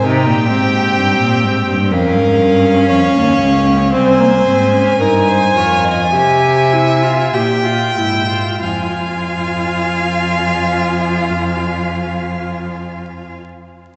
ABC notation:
X:1
M:4/4
L:1/16
Q:1/4=52
K:Fm
V:1 name="Violin"
g8 f8 | a12 =e2 e2 | a16 |]
V:2 name="Violin"
G8 B4 d4 | c4 B c d e =e4 g4 | f16 |]
V:3 name="Viola"
E2 C6 D8 | C B, C D E2 F2 G2 =E F G F E F | F16 |]
V:4 name="Cello" clef=bass
C, B,, A,,2 G,, B,, A,, G,, F,, A,, G,,2 F,, E,, D,,2 | C,,2 A,,2 G,,2 F,,2 C,4 B,,2 A,,2 | F,,16 |]